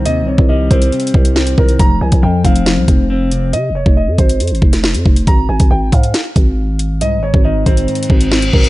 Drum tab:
HH |x-----------------x--x--x-x-x----x-----x-----x--|x--------x--------x--x--x-----x-----------x-----|x-----------------x--x--x-x-x----x-----x-----x--|x--------x--------x--x--x-----x-----------x-----|
SD |------------------------------------o-----------|------------------------o-----------------------|---------------------------------o--o-----------|------------------------o-----------------------|
BD |---------o--------o-----------o-----------o-----|o--------o--------o-----------o-----------------|---------o--------o-----------o-----------o-----|o--------o--------o-----------o-----------------|

HH |x-----------------x--x--x-x-x----x-----x-----x--|
SD |------------------------------------o-----------|
BD |---------o--------o-----------o-----------o-----|